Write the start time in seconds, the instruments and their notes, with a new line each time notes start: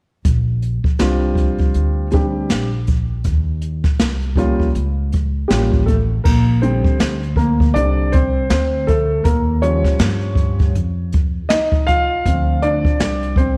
0.25 upright bass A#1, kick, closed hi-hat
0.62 closed hi-hat
0.84 muted upright bass stroke, kick
0.99 upright bass C2, upright piano G3 C4 D4 F4, snare, closed hi-hat
1.35 kick, closed hi-hat
1.58 kick, closed hi-hat
1.74 upright bass D2, closed hi-hat
2.11 upright piano G3 C4 D4 G4, kick, closed hi-hat
2.49 upright bass A#1, snare, closed hi-hat
2.87 kick, closed hi-hat
3.24 upright bass D#2, kick, closed hi-hat
3.61 closed hi-hat
3.84 muted upright bass stroke, kick, snare
3.99 upright bass C2, snare, closed hi-hat
4.22 closed hi-hat
4.36 upright piano G3 A#3 C#4 F4, kick, closed hi-hat
4.60 kick
4.75 upright bass C#2, closed hi-hat
5.12 kick, closed hi-hat
5.48 upright bass A1, upright piano G3 A#3 C#4 F4 G4, snare, closed hi-hat
5.72 kick
5.86 upright piano A3 A4, kick, closed hi-hat
6.24 upright bass A#1, upright piano A#3 A#4, kick, crash
6.62 upright piano D3 G3 C4 C5, closed hi-hat
6.84 muted upright bass stroke, kick
7.00 upright bass D2, snare, closed hi-hat
7.23 closed hi-hat
7.36 upright piano A#3 A#4, kick, closed hi-hat
7.60 kick
7.74 upright bass C2, upright piano D3 G3 C4 D4 D5, closed hi-hat
8.12 upright piano C4 C5, kick, closed hi-hat
8.50 upright bass D2, upright piano C4 C5, snare, closed hi-hat
8.87 upright piano A3 A4, kick, closed hi-hat
9.24 upright bass D#2, upright piano A#3 A#4, kick, closed hi-hat
9.62 upright piano F3 G3 C#4 C#5, closed hi-hat
9.85 muted upright bass stroke, kick, snare
9.99 upright bass G2, snare, closed hi-hat
10.21 closed hi-hat
10.35 kick, closed hi-hat
10.59 kick, closed hi-hat
10.75 upright bass F2, closed hi-hat
11.12 kick, closed hi-hat
11.49 upright bass C2, upright piano D#4 D#5, snare, closed hi-hat
11.72 kick
11.87 upright piano F4 F5, kick, closed hi-hat
12.25 upright bass D2, upright piano F3 C4, kick, closed hi-hat
12.62 upright piano D4 D5, closed hi-hat
12.85 muted upright bass stroke, kick
13.00 upright bass C2, snare, closed hi-hat
13.22 closed hi-hat
13.36 upright piano C4 C5, kick, closed hi-hat